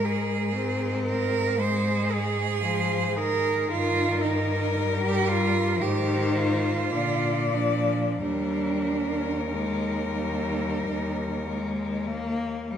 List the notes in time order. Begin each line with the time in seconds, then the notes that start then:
Already playing: G#2 G#3 A#4
0.05 G#4
0.54 C4
1.07 A#4
1.59 G#3 G#4 C5
2.12 G#4
2.63 F3 C5
3.16 D#3 G#4 A#4
3.69 G2 F4 A#4
4.23 D#4
4.75 G3
5.02 G4
5.27 F4
5.80 G#2 D#3 G4 C5
6.36 F4
6.92 A#2 D3 D5
7.54 F3 D4
8.19 D#2 G3 D4 A#4
9.49 G#3 D#4
10.14 G3
11.44 G#3
12.07 A#3
12.70 G3